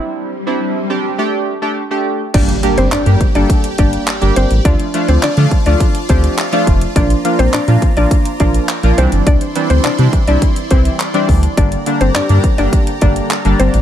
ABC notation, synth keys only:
X:1
M:4/4
L:1/16
Q:1/4=104
K:Gdor
V:1 name="Synth keys"
[CDE]2 z [CDE]2 z [CDG]2 [A,DG]2 z [A,DG] z [A,DG]2 z | [G,B,DG] z [G,B,DG]2 z [G,B,DG] z [G,B,DA]2 z [G,B,DG]2 z [G,B,DG]2 z | [F,A,DF] z [F,A,DF]2 z [F,A,DF] z [F,A,DF]2 z [F,A,DG]2 z [F,A,DF]2 z | [F,B,DF] z [F,B,DF]2 z [F,B,DF] z [F,B,DF]2 z [F,B,DF]2 z [F,B,DF] [E,G,CD]2- |
[E,G,CD] z [E,G,CD]2 z [E,G,CD] z [E,G,CE]2 z [E,G,CE]2 z [E,G,CD]2 z | [D,G,B,D] z [D,G,B,D]2 z [D,G,B,D] z [D,G,B,D]2 z [D,G,B,D]2 z [D,G,B,D]2 z |]